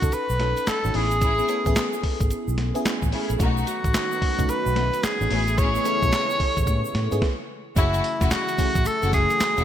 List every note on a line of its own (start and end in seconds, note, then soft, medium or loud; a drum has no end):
0.00 0.11 C#2 medium
0.00 0.02 C#4 medium
0.00 0.37 C#4 medium
0.00 0.02 D#4 medium
0.00 0.37 D#4 medium
0.00 0.02 F#4 medium
0.00 0.15 F#4 medium
0.00 0.37 F#4 medium
0.00 0.03 A4 medium
0.00 0.37 A4 medium
0.00 kick loud
0.00 closed hi-hat medium
0.00 shaker medium
0.12 0.70 B4 loud
0.12 closed hi-hat medium
0.12 shaker medium
0.30 0.52 B1 medium
0.30 shaker medium
0.39 0.79 C#4 medium
0.39 0.79 D#4 medium
0.39 0.80 F#4 medium
0.39 0.80 A4 medium
0.39 snare medium
0.39 closed hi-hat medium
0.57 closed hi-hat medium
0.57 shaker soft
0.67 0.97 A4 loud
0.67 muted fingered electric bass stroke soft
0.67 snare medium
0.67 clap medium
0.67 closed hi-hat medium
0.67 shaker medium
0.84 0.93 A1 medium
0.84 0.93 C#4 medium
0.84 0.94 D#4 medium
0.84 0.95 F#4 medium
0.84 0.95 A4 medium
0.84 shaker soft
0.94 1.40 A1 medium
0.94 1.15 A3 medium
0.94 1.34 B3 medium
0.94 1.34 C#4 medium
0.94 1.15 C#4 medium
0.94 1.15 E4 medium
0.94 1.34 E4 medium
0.94 1.15 G#4 medium
0.94 1.34 G#4 medium
0.94 2.04 G#4 medium
0.94 open hi-hat medium
1.11 closed hi-hat soft
1.11 shaker medium
1.21 1.47 A3 loud
1.21 1.47 C#4 medium
1.21 1.48 E4 medium
1.21 1.48 G#4 loud
1.21 kick loud
1.21 closed hi-hat medium
1.21 shaker medium
1.38 1.47 B3 medium
1.38 1.48 C#4 medium
1.38 1.48 E4 medium
1.38 1.48 G#4 medium
1.38 shaker medium
1.48 1.64 B3 medium
1.48 1.65 C#4 medium
1.48 1.65 E4 medium
1.48 1.65 A4 medium
1.48 closed hi-hat medium
1.48 shaker medium
1.66 1.75 A1 medium
1.66 2.62 B3 loud
1.66 2.62 C#4 medium
1.66 2.62 E4 medium
1.66 2.62 G#4 loud
1.66 kick medium
1.66 closed hi-hat soft
1.66 shaker medium
1.76 snare loud
1.76 clap medium
1.76 closed hi-hat medium
1.76 shaker medium
1.93 shaker soft
2.03 muted fingered electric bass stroke soft
2.03 kick medium
2.03 open hi-hat medium
2.21 2.29 G#1 medium
2.21 kick loud
2.21 closed hi-hat medium
2.21 shaker medium
2.30 muted fingered electric bass stroke soft
2.30 closed hi-hat medium
2.30 shaker medium
2.48 2.70 B1 loud
2.48 shaker medium
2.58 snare medium
2.58 closed hi-hat medium
2.74 3.35 B3 loud
2.74 3.35 C#4 medium
2.74 3.35 E4 loud
2.74 3.35 G#4 loud
2.74 closed hi-hat soft
2.74 shaker soft
2.85 muted fingered electric bass stroke soft
2.85 snare loud
2.85 clap medium
2.85 closed hi-hat medium
2.85 shaker medium
3.02 3.11 A1 loud
3.02 kick medium
3.02 shaker soft
3.12 3.33 A3 medium
3.12 3.33 C#4 medium
3.12 3.33 E4 medium
3.12 3.33 G#4 medium
3.12 open hi-hat medium
3.30 3.38 A#1 medium
3.30 closed hi-hat soft
3.30 shaker medium
3.39 3.62 B1 loud
3.39 5.29 D#3 medium
3.39 5.29 F#3 medium
3.39 4.27 A3 medium
3.39 3.65 A3 loud
3.39 5.29 A3 medium
3.39 3.66 B3 medium
3.39 5.29 B3 medium
3.39 4.27 C#4 medium
3.39 4.27 D#4 medium
3.39 3.66 D#4 loud
3.39 5.29 F#4 medium
3.39 4.27 F#4 medium
3.39 3.66 F#4 loud
3.39 kick loud
3.39 closed hi-hat medium
3.39 shaker medium
3.57 shaker medium
3.67 4.51 F#4 medium
3.67 closed hi-hat medium
3.67 shaker medium
3.84 3.93 A1 medium
3.84 kick loud
3.84 closed hi-hat soft
3.84 shaker soft
3.94 snare loud
3.94 clap medium
3.94 closed hi-hat medium
3.94 shaker medium
4.12 shaker soft
4.22 muted fingered electric bass stroke soft
4.22 kick medium
4.22 open hi-hat medium
4.38 4.47 C#2 medium
4.38 4.73 A3 medium
4.38 4.73 C#4 medium
4.38 4.74 D#4 medium
4.38 4.74 F#4 medium
4.38 kick medium
4.38 closed hi-hat medium
4.38 shaker medium
4.49 5.05 B4 loud
4.49 muted fingered electric bass stroke soft
4.49 closed hi-hat medium
4.49 shaker medium
4.66 4.89 B1 loud
4.66 shaker medium
4.75 5.15 A3 medium
4.75 5.16 C#4 medium
4.75 5.16 D#4 medium
4.75 5.16 F#4 medium
4.75 snare medium
4.75 closed hi-hat medium
4.93 closed hi-hat soft
4.93 shaker soft
5.03 5.60 G#4 loud
5.03 muted fingered electric bass stroke soft
5.03 snare loud
5.03 clap medium
5.03 closed hi-hat medium
5.03 shaker medium
5.20 5.29 A1 medium
5.20 5.31 A3 medium
5.20 5.30 C#4 medium
5.20 5.31 D#4 medium
5.20 5.31 F#4 medium
5.20 shaker medium
5.30 5.76 A1 loud
5.30 7.20 C#3 medium
5.30 7.20 E3 medium
5.30 7.20 G#3 medium
5.30 5.51 A3 medium
5.30 7.20 A3 medium
5.30 5.70 B3 medium
5.30 5.51 C#4 medium
5.30 5.71 C#4 medium
5.30 5.51 E4 medium
5.30 7.20 E4 medium
5.30 5.71 E4 medium
5.30 5.51 G#4 loud
5.30 5.71 G#4 medium
5.30 open hi-hat medium
5.48 closed hi-hat medium
5.48 shaker medium
5.58 5.84 A3 loud
5.58 5.84 C#4 medium
5.58 5.84 E4 medium
5.58 5.84 G#4 loud
5.58 7.22 C#5 loud
5.58 kick loud
5.58 closed hi-hat medium
5.58 shaker medium
5.75 5.84 B3 medium
5.75 5.84 C#4 medium
5.75 5.84 E4 medium
5.75 5.85 B4 medium
5.75 shaker medium
5.85 6.00 B3 medium
5.85 6.01 C#4 medium
5.85 6.01 E4 medium
5.85 6.01 A4 loud
5.85 closed hi-hat medium
5.85 shaker medium
6.01 6.11 B1 medium
6.01 6.98 B3 medium
6.01 6.98 C#4 medium
6.01 6.98 E4 medium
6.01 6.07 G4 medium
6.01 kick medium
6.01 closed hi-hat soft
6.01 shaker medium
6.09 7.02 G#4 medium
6.09 snare loud
6.09 closed hi-hat medium
6.09 shaker medium
6.14 clap medium
6.30 shaker medium
6.40 muted fingered electric bass stroke soft
6.40 kick medium
6.40 open hi-hat medium
6.57 6.65 A1 medium
6.57 kick medium
6.57 closed hi-hat medium
6.57 shaker medium
6.67 6.82 A2 loud
6.67 kick medium
6.67 closed hi-hat medium
6.67 shaker medium
6.85 shaker medium
6.95 7.09 A2 loud
6.95 snare medium
6.95 closed hi-hat medium
7.11 7.20 G#2 medium
7.11 7.22 B3 loud
7.11 7.22 C#4 loud
7.11 7.22 E4 medium
7.11 7.22 G#4 loud
7.11 closed hi-hat soft
7.11 shaker soft
7.22 kick loud
7.22 snare medium
7.75 7.99 F#1 loud
7.75 9.64 C#3 medium
7.75 9.64 E3 medium
7.75 9.64 F#3 medium
7.75 8.52 A3 medium
7.75 7.97 A3 medium
7.75 9.64 A3 medium
7.75 8.52 C#4 medium
7.75 7.97 C#4 medium
7.75 8.52 E4 medium
7.75 7.97 E4 medium
7.75 9.64 E4 medium
7.75 8.33 E4 loud
7.75 7.97 F#4 loud
7.75 8.53 G#4 medium
7.75 kick loud
7.75 closed hi-hat medium
7.75 shaker medium
7.94 closed hi-hat medium
7.94 shaker soft
8.04 closed hi-hat medium
8.04 tambourine medium
8.21 8.29 E1 medium
8.21 8.36 A3 medium
8.21 8.36 C#4 medium
8.21 8.36 E4 medium
8.21 8.37 F#4 medium
8.21 kick loud
8.21 snare medium
8.21 closed hi-hat soft
8.21 shaker medium
8.31 8.88 F#4 loud
8.31 snare loud
8.31 clap medium
8.31 closed hi-hat medium
8.31 tambourine medium
8.31 shaker medium
8.48 closed hi-hat medium
8.48 shaker soft
8.58 8.97 A3 medium
8.58 8.98 C#4 medium
8.58 8.98 E4 medium
8.58 8.98 G#4 medium
8.58 muted fingered electric bass stroke medium
8.58 kick medium
8.58 open hi-hat medium
8.58 tambourine medium
8.58 shaker medium
8.75 8.84 A1 medium
8.75 kick loud
8.75 closed hi-hat medium
8.75 shaker medium
8.85 9.13 A4 loud
8.85 muted fingered electric bass stroke soft
8.85 closed hi-hat medium
8.85 tambourine medium
8.85 shaker medium
9.02 9.25 F#1 loud
9.02 9.62 A3 medium
9.02 9.18 A3 medium
9.02 9.62 C#4 medium
9.02 9.18 C#4 medium
9.02 9.62 E4 medium
9.02 9.18 E4 medium
9.02 9.08 F#4 medium
9.02 9.18 F#4 medium
9.02 closed hi-hat medium
9.02 shaker medium
9.09 9.64 G#4 medium
9.09 kick loud
9.09 closed hi-hat medium
9.09 tambourine medium
9.09 shaker soft
9.14 9.64 G#4 loud
9.30 closed hi-hat soft
9.30 shaker soft
9.40 muted fingered electric bass stroke soft
9.40 snare loud
9.40 clap medium
9.40 closed hi-hat medium
9.40 tambourine medium
9.40 shaker medium
9.57 9.64 E1 loud
9.57 9.64 A3 medium
9.57 9.64 C#4 medium
9.57 9.64 E4 medium
9.57 9.64 F#4 medium
9.57 closed hi-hat medium
9.57 shaker soft